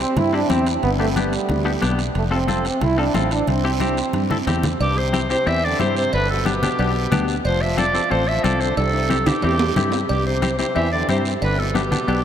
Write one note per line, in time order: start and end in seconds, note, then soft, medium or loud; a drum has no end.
0.00 0.19 C4 medium
0.00 high timbale medium
0.00 short guiro medium
0.17 0.43 G2 loud
0.17 0.36 E4 medium
0.17 high conga soft
0.17 low conga medium
0.17 high timbale medium
0.17 long guiro medium
0.33 0.39 C4 medium
0.33 0.53 D4 medium
0.33 0.39 E4 medium
0.33 0.39 G4 medium
0.50 0.76 E2 medium
0.50 0.67 C4 medium
0.50 0.68 E4 medium
0.50 0.68 G4 medium
0.50 high conga medium
0.50 high timbale medium
0.50 short guiro medium
0.66 high timbale medium
0.66 short guiro medium
0.83 1.36 G1 loud
0.83 0.91 B3 medium
0.83 high conga soft
0.83 high timbale medium
0.83 long guiro medium
0.99 1.08 A3 medium
0.99 1.05 B3 medium
0.99 1.05 D4 medium
0.99 1.06 G4 medium
1.16 1.96 G3 medium
1.16 1.34 B3 medium
1.16 1.34 D4 medium
1.16 1.34 G4 medium
1.16 high conga medium
1.16 high timbale medium
1.16 short guiro medium
1.33 high timbale medium
1.33 short guiro medium
1.49 1.76 D2 medium
1.49 high conga soft
1.49 low conga medium
1.49 high timbale medium
1.49 long guiro medium
1.65 1.71 B3 medium
1.65 1.71 D4 medium
1.65 1.71 G4 medium
1.82 2.09 B1 medium
1.82 1.99 B3 medium
1.82 2.00 D4 medium
1.82 2.00 G4 loud
1.82 high conga medium
1.82 high timbale medium
1.82 low timbale medium
1.82 short guiro medium
1.99 high timbale medium
1.99 short guiro medium
2.15 2.68 F1 loud
2.15 2.24 A3 medium
2.15 high conga soft
2.15 high timbale medium
2.15 long guiro medium
2.31 2.37 C4 medium
2.31 2.64 C4 medium
2.31 2.37 F4 medium
2.31 2.38 A4 medium
2.48 2.66 C4 medium
2.48 2.66 F4 medium
2.48 2.66 A4 medium
2.48 high conga medium
2.48 high timbale medium
2.48 short guiro medium
2.65 2.84 C4 medium
2.65 high timbale medium
2.65 short guiro medium
2.81 3.08 C2 loud
2.81 3.01 E4 loud
2.81 high conga soft
2.81 low conga medium
2.81 high timbale medium
2.81 long guiro medium
2.98 3.04 C4 medium
2.98 3.16 D4 medium
2.98 3.04 F4 medium
2.98 3.04 A4 medium
3.14 3.41 A1 loud
3.14 3.32 C4 medium
3.14 3.31 C4 medium
3.14 3.32 F4 medium
3.14 3.32 A4 medium
3.14 high conga medium
3.14 high timbale medium
3.14 low timbale medium
3.14 short guiro medium
3.31 3.50 D4 medium
3.31 high timbale medium
3.31 short guiro medium
3.47 4.01 C2 loud
3.47 4.48 C4 medium
3.47 high conga soft
3.47 low conga medium
3.47 high timbale medium
3.47 long guiro medium
3.64 3.70 C4 medium
3.64 3.70 E4 medium
3.64 3.71 G4 medium
3.80 3.98 C4 medium
3.80 3.98 E4 medium
3.80 3.98 G4 medium
3.80 high conga medium
3.80 high timbale medium
3.80 short guiro medium
3.97 high timbale medium
3.97 short guiro medium
4.13 4.41 G2 medium
4.13 high conga medium
4.13 high timbale medium
4.13 long guiro medium
4.31 4.36 C4 medium
4.31 4.37 E4 medium
4.31 4.37 A4 medium
4.31 low conga medium
4.47 4.74 E2 medium
4.47 4.65 C4 medium
4.47 4.65 E4 medium
4.47 4.65 G4 medium
4.47 low conga medium
4.47 high timbale medium
4.47 low timbale medium
4.47 short guiro medium
4.63 low conga medium
4.63 high timbale medium
4.63 short guiro medium
4.80 5.33 C2 loud
4.80 4.99 G2 medium
4.80 5.00 G4 loud
4.80 cowbell loud
4.80 high conga soft
4.80 long guiro medium
4.98 5.30 C3 medium
4.98 5.30 C5 medium
5.13 5.19 C4 medium
5.13 5.19 E4 medium
5.13 5.19 G4 medium
5.13 high conga medium
5.13 short guiro medium
5.30 5.49 C3 medium
5.30 5.36 C4 medium
5.30 5.36 E4 medium
5.30 5.36 G4 medium
5.30 5.49 C5 loud
5.30 short guiro medium
5.46 5.73 E2 medium
5.46 5.66 E3 medium
5.46 5.58 C4 medium
5.46 5.58 E4 medium
5.46 5.59 G4 medium
5.46 5.66 E5 loud
5.46 cowbell medium
5.46 high conga soft
5.46 long guiro medium
5.64 5.80 D3 medium
5.64 5.80 D5 medium
5.79 6.07 G2 medium
5.79 5.96 C3 medium
5.79 6.03 C4 medium
5.79 6.03 E4 medium
5.79 6.03 G4 medium
5.79 5.96 C5 loud
5.79 high conga medium
5.79 low timbale medium
5.79 short guiro medium
5.96 6.12 C3 medium
5.96 6.12 C5 loud
5.96 short guiro medium
6.13 6.66 G1 loud
6.13 6.29 D3 medium
6.13 6.29 B4 loud
6.13 cowbell loud
6.13 high conga soft
6.13 long guiro medium
6.30 6.47 B2 medium
6.30 6.47 A4 medium
6.45 7.29 B2 medium
6.45 6.51 B3 medium
6.45 6.52 D4 medium
6.45 7.29 G4 loud
6.45 6.52 G4 medium
6.45 high conga medium
6.45 short guiro medium
6.63 6.68 B3 medium
6.63 6.69 D4 medium
6.63 6.69 G4 medium
6.63 low conga medium
6.63 short guiro medium
6.79 7.06 B1 medium
6.79 6.91 B3 medium
6.79 6.91 D4 medium
6.79 6.91 G4 medium
6.79 cowbell medium
6.79 high conga soft
6.79 long guiro medium
7.12 7.39 D2 loud
7.12 7.35 B3 medium
7.12 7.35 D4 medium
7.12 7.35 G4 medium
7.12 high conga medium
7.12 low conga medium
7.12 short guiro medium
7.28 short guiro medium
7.45 7.98 F1 loud
7.45 7.63 F3 medium
7.45 7.63 C5 loud
7.45 cowbell loud
7.45 high conga soft
7.45 long guiro medium
7.61 7.79 F3 medium
7.61 7.78 E5 loud
7.77 8.12 F3 medium
7.77 7.84 C4 medium
7.77 7.84 F4 medium
7.77 7.84 A4 medium
7.77 8.13 D5 loud
7.77 high conga medium
7.77 short guiro medium
7.94 8.00 C4 medium
7.94 8.00 F4 medium
7.94 8.01 A4 medium
7.94 short guiro medium
8.10 8.38 A1 medium
8.10 8.28 F3 medium
8.10 8.22 C4 medium
8.10 8.23 F4 medium
8.10 8.23 A4 medium
8.10 8.29 C5 loud
8.10 cowbell medium
8.10 high conga soft
8.10 long guiro medium
8.28 8.45 F3 medium
8.28 8.45 E5 loud
8.44 8.71 C2 medium
8.44 8.62 F3 medium
8.44 8.67 C4 medium
8.44 8.67 F4 medium
8.44 8.68 A4 medium
8.44 8.62 D5 medium
8.44 high conga medium
8.44 short guiro medium
8.60 8.77 D3 medium
8.60 8.77 C5 medium
8.60 short guiro medium
8.77 9.30 C2 loud
8.77 9.29 C3 medium
8.77 9.29 A4 loud
8.77 cowbell loud
8.77 high conga soft
8.77 high timbale medium
8.77 long guiro medium
8.93 high timbale medium
9.10 9.16 C4 medium
9.10 9.16 E4 medium
9.10 9.16 G4 medium
9.10 high conga medium
9.10 short guiro medium
9.26 9.43 G2 medium
9.26 9.33 C4 medium
9.26 9.33 E4 medium
9.26 9.43 G4 medium
9.26 9.33 G4 medium
9.26 low conga medium
9.26 high timbale medium
9.26 short guiro medium
9.42 9.70 E2 medium
9.42 9.90 G2 medium
9.42 9.55 C4 medium
9.42 9.55 E4 medium
9.42 9.90 G4 medium
9.42 9.55 G4 medium
9.42 cowbell medium
9.42 high conga soft
9.42 low timbale medium
9.42 long guiro medium
9.59 low timbale loud
9.76 10.03 G2 medium
9.76 10.00 C4 medium
9.76 10.00 E4 medium
9.76 10.00 G4 medium
9.76 high conga medium
9.76 low conga medium
9.76 low timbale medium
9.76 short guiro medium
9.92 low timbale loud
9.92 short guiro medium
10.09 10.63 C2 loud
10.09 10.25 G2 medium
10.09 10.25 G4 loud
10.09 cowbell loud
10.09 high conga soft
10.09 long guiro medium
10.26 10.57 C3 medium
10.26 10.57 C5 medium
10.42 10.48 C4 medium
10.42 10.48 E4 medium
10.42 10.49 G4 medium
10.42 high conga medium
10.42 short guiro medium
10.59 10.75 C3 medium
10.59 10.65 C4 medium
10.59 10.65 E4 medium
10.59 10.65 G4 medium
10.59 10.74 C5 medium
10.59 short guiro medium
10.75 11.03 E2 medium
10.75 10.92 E3 medium
10.75 10.87 C4 medium
10.75 10.87 E4 medium
10.75 10.88 G4 medium
10.75 10.91 E5 loud
10.75 cowbell medium
10.75 high conga soft
10.75 long guiro medium
10.92 11.08 D3 medium
10.92 11.08 D5 medium
11.09 11.36 G2 loud
11.09 11.25 C3 medium
11.09 11.32 C4 medium
11.09 11.32 E4 medium
11.09 11.32 G4 medium
11.09 11.24 C5 medium
11.09 high conga medium
11.09 short guiro medium
11.25 short guiro medium
11.41 11.95 G1 loud
11.41 11.60 D3 medium
11.41 11.60 B4 loud
11.41 cowbell loud
11.41 high conga soft
11.41 long guiro medium
11.59 11.76 B2 medium
11.59 11.77 A4 medium
11.75 12.24 B2 medium
11.75 11.81 B3 medium
11.75 11.81 D4 medium
11.75 11.81 G4 medium
11.75 12.24 G4 medium
11.75 high conga medium
11.75 short guiro medium
11.91 11.97 B3 medium
11.91 11.98 D4 medium
11.91 11.98 G4 medium
11.91 low conga medium
11.91 short guiro medium
12.08 12.24 B1 medium
12.08 12.20 B3 medium
12.08 12.20 D4 medium
12.08 12.20 G4 medium
12.08 cowbell medium
12.08 high conga soft
12.08 long guiro medium